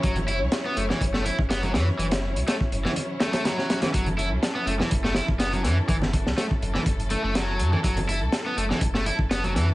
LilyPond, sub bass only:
\new Staff \with { instrumentName = "Sub bass" } { \clef bass \time 4/4 \key fis \minor \tempo 4 = 123 fis,,8. cis,16 r8 fis,,16 r16 fis,,8 r16 fis,,8. fis,16 r16 | fis,,8. cis,16 r8 fis,,16 r2 r16 | fis,,8. cis,16 r8 fis,,16 r16 fis,,8 r16 fis,,8. fis,16 r16 | fis,,8. cis,16 r8 fis,,16 r16 fis,,8 r16 fis,,8. fis,16 r16 |
fis,,8. cis,16 r8 fis,,16 r16 fis,,8 r16 fis,,8. fis,16 r16 | }